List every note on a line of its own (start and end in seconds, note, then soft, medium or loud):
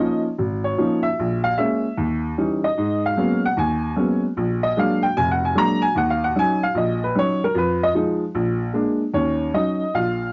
0.00 0.25 F3 medium
0.00 0.25 A#3 soft
0.00 0.25 C#4 soft
0.00 0.25 D#4 medium
0.00 0.20 D#5 medium
0.38 0.72 G#1 medium
0.64 1.01 C#5 medium
0.78 1.05 F3 medium
0.78 1.05 A#3 soft
0.78 1.05 C#4 soft
0.78 1.05 D#4 medium
1.03 1.40 E5 medium
1.19 1.53 A#1 medium
1.44 1.57 F5 medium
1.58 1.85 G#3 medium
1.58 1.85 A#3 soft
1.58 1.86 C#4 medium
1.58 2.19 E5 medium
1.98 2.32 D#2 medium
2.38 2.65 E3 medium
2.38 2.65 G3 medium
2.38 2.65 C#4 soft
2.38 2.65 D#4 medium
2.64 3.01 D#5 medium
2.78 3.12 G#2 medium
3.06 3.41 F5 medium
3.17 3.44 F#3 medium
3.17 3.44 G#3 soft
3.17 3.44 A#3 soft
3.17 3.45 B3 medium
3.17 3.45 C#4 medium
3.45 3.57 F#5 medium
3.57 3.91 D#2 medium
3.57 4.19 G#5 medium
3.96 4.24 F#3 medium
3.96 4.24 G#3 soft
3.96 4.24 A#3 soft
3.96 4.24 B3 medium
3.96 4.24 C#4 medium
4.37 4.71 A#1 medium
4.63 4.76 D#5 medium
4.77 5.04 F#3 medium
4.77 5.04 G#3 medium
4.77 5.04 A#3 soft
4.77 5.04 D4 medium
4.77 5.03 F5 medium
5.03 5.16 G5 medium
5.17 5.51 F1 medium
5.17 5.29 G#5 loud
5.31 5.43 F#5 medium
5.45 5.56 G#5 medium
5.55 5.83 F#3 medium
5.55 5.83 G#3 medium
5.55 5.83 A#3 medium
5.55 5.83 D4 medium
5.55 5.82 A#5 loud
5.82 5.95 G#5 loud
5.95 6.30 D#2 medium
5.95 6.09 F#5 medium
6.10 6.22 F5 medium
6.24 6.36 F#5 medium
6.36 6.63 F#3 medium
6.36 6.63 C#4 medium
6.36 6.63 D#4 medium
6.36 6.63 G#5 loud
6.63 6.76 F5 medium
6.75 7.09 A#1 medium
6.75 7.02 D#5 medium
7.04 7.16 B4 medium
7.15 7.43 F#3 medium
7.15 7.43 C#4 medium
7.15 7.43 D#4 medium
7.15 7.42 C#5 loud
7.44 7.56 A#4 medium
7.55 7.89 F2 medium
7.55 7.82 B4 medium
7.83 7.91 D#5 medium
7.94 8.22 F3 medium
7.94 8.23 G#3 medium
7.94 8.23 D#4 medium
8.35 8.69 A#1 medium
8.74 9.02 G#3 medium
8.74 9.02 A#3 soft
8.74 9.02 D4 medium
9.14 9.49 D#2 medium
9.14 9.49 D#3 medium
9.14 9.53 C#4 medium
9.14 9.56 C#5 medium
9.54 9.82 F#3 soft
9.54 9.82 C#4 soft
9.54 9.82 D#4 medium
9.54 9.96 D#5 medium
9.94 10.29 A#1 medium
9.94 10.32 F4 medium
9.94 10.32 F5 medium